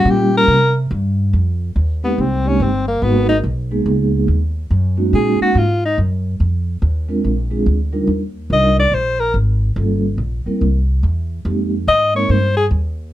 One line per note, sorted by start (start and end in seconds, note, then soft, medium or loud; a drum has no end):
0.00 0.49 G3 medium
0.00 0.49 A#3 medium
0.00 0.49 C#4 medium
0.00 0.49 F4 medium
0.00 0.12 F#4 medium
0.00 0.49 G4 medium
0.05 0.47 A#2 medium
0.10 0.35 G4 medium
0.37 0.75 A#4 loud
0.48 0.89 C3 medium
0.91 1.32 G2 medium
1.33 1.74 F2 medium
1.76 2.16 D#2 medium
2.03 2.16 G#3 medium
2.03 2.16 A#3 medium
2.03 2.22 B3 medium
2.03 2.16 C4 medium
2.03 2.17 D#4 medium
2.03 2.17 G4 medium
2.18 2.59 C2 medium
2.18 2.49 C4 medium
2.44 2.58 G#3 medium
2.44 2.58 A#3 medium
2.44 2.58 C4 medium
2.44 2.64 C#4 medium
2.44 2.58 D#4 medium
2.44 2.58 G4 medium
2.60 3.01 G1 medium
2.60 2.87 C4 medium
2.88 3.05 A#3 medium
3.02 3.43 G#1 medium
3.02 3.26 G#3 medium
3.02 3.26 A#3 medium
3.02 3.26 B3 medium
3.02 3.28 B3 medium
3.02 3.27 D#4 medium
3.02 3.27 F#4 medium
3.29 3.38 D#4 medium
3.43 3.85 B1 medium
3.71 4.25 G#3 medium
3.71 4.25 A#3 medium
3.71 4.26 B3 medium
3.71 4.25 D#4 medium
3.71 4.26 G#4 medium
3.86 4.27 C#2 medium
4.28 4.69 D#2 medium
4.71 5.12 F#2 medium
4.97 5.52 G#3 medium
4.97 5.52 A#3 medium
4.97 5.52 C#4 medium
4.97 5.52 D#4 medium
4.97 5.52 F#4 medium
5.13 5.38 A#2 medium
5.13 5.39 G#4 medium
5.40 5.59 F#4 medium
5.40 muted upright bass stroke soft
5.55 5.96 G#2 medium
5.55 5.83 F4 medium
5.85 5.98 D#4 medium
5.98 6.38 F#2 medium
6.40 6.81 F2 medium
6.82 7.23 D#2 medium
7.09 7.22 G#3 medium
7.09 7.22 C4 medium
7.09 7.22 D4 medium
7.09 7.23 F4 medium
7.09 7.23 A#4 medium
7.24 7.65 A#1 medium
7.51 7.64 G#3 medium
7.51 7.64 C4 medium
7.51 7.64 D4 medium
7.51 7.64 F4 medium
7.51 7.65 G#4 medium
7.66 8.07 D2 medium
7.93 8.06 G3 medium
7.93 8.06 D4 medium
7.93 8.06 D#4 medium
7.93 8.07 F4 medium
7.93 8.07 A#4 medium
8.07 8.49 D#2 medium
8.50 8.91 C2 medium
8.50 8.75 G3 medium
8.50 8.75 D4 medium
8.50 8.75 D#4 medium
8.50 8.75 F4 medium
8.50 8.75 A#4 medium
8.50 8.77 D#5 medium
8.79 8.96 D5 medium
8.92 9.33 A#1 medium
8.92 9.21 C5 medium
9.20 9.35 A#4 medium
9.34 9.75 G#1 medium
9.76 10.17 G1 medium
9.76 10.01 G3 medium
9.76 10.01 A#3 medium
9.76 10.01 C#4 soft
9.76 10.02 F4 soft
9.76 10.02 A4 medium
10.18 10.43 A#1 medium
10.46 10.59 G3 medium
10.46 10.60 A#3 medium
10.46 10.60 C4 medium
10.46 10.60 E4 medium
10.46 10.60 A#4 medium
10.46 muted upright bass stroke soft
10.61 11.02 C2 medium
11.03 11.44 E2 medium
11.45 11.86 F2 medium
11.45 11.70 G#3 medium
11.45 11.70 A#3 medium
11.45 11.70 C4 soft
11.45 11.70 D#4 medium
11.45 11.70 G4 medium
11.87 12.28 G#2 medium
11.87 12.13 D#5 loud
12.15 12.28 G#3 medium
12.15 12.28 A#3 medium
12.15 12.28 C4 medium
12.15 12.28 D#4 medium
12.15 12.28 A#4 medium
12.15 12.32 C#5 medium
12.29 12.70 G2 medium
12.29 12.56 C5 medium
12.57 12.66 G#4 medium
12.71 13.12 D#2 medium